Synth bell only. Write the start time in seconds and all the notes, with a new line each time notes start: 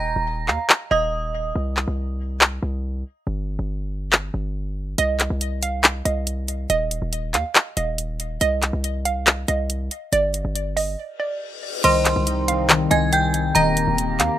Already playing: A#5 A#6
0.91 D#5 D#6
11.84 C5 C6
12.91 G#5 G#6
13.13 G5 G6
13.55 A#5 A#6